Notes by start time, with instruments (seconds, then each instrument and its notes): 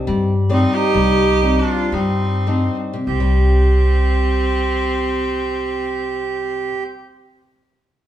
Already playing: nylon-string guitar C4 D4 D#4
0.07 upright bass G2, nylon-string guitar G3
0.49 nylon-string guitar C4 D#4 D5, accordion C4, viola D#4
0.74 accordion D#4, viola G4
0.94 upright bass C2, nylon-string guitar G3
1.42 nylon-string guitar C4 D#4 D5
1.59 accordion D4, viola F4
1.92 upright bass G2, nylon-string guitar G3, accordion C4, viola D#4
2.47 nylon-string guitar C4 D4 D#4
2.93 nylon-string guitar C3
3.07 upright bass C2, viola C4, accordion G4
3.20 nylon-string guitar G3